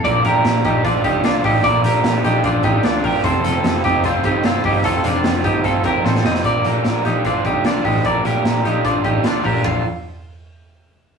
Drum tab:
RD |----------------|----------------|----------------|----------------|
HH |x-x-x-x-x-x-x-o-|x-x-x-x-x-x-x-o-|x-x-x-x-x-x-x-o-|x-x-x-x-x-x-----|
SD |----o-------o---|----o-------o---|----o-------o---|----o-------oooo|
FT |----------------|----------------|----------------|----------------|
BD |o-----o-o-o---o-|o-------o-o---o-|o-----o-o-o---o-|o-----o-o-o-----|

RD |----------------|----------------|b---------------|
HH |x-x-x-x-x-x-x-o-|x-x-x-x-x-x-x-o-|----------------|
SD |----o-------o---|----o-------o---|----------------|
FT |----------------|----------------|o---------------|
BD |o-------o-o---o-|o-------o-o---o-|o---------------|